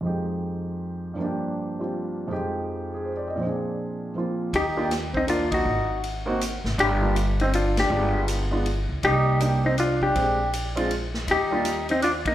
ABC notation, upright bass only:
X:1
M:3/4
L:1/8
Q:"Swing" 1/4=160
K:Eb
V:1 name="Upright bass" clef=bass
z6 | z6 | z6 | z6 |
E,,6 | A,,,4- A,,, A,,, | G,,,6 | G,,,4- G,,, _D,, |
C,,6 | B,,,6 | E,,6 |]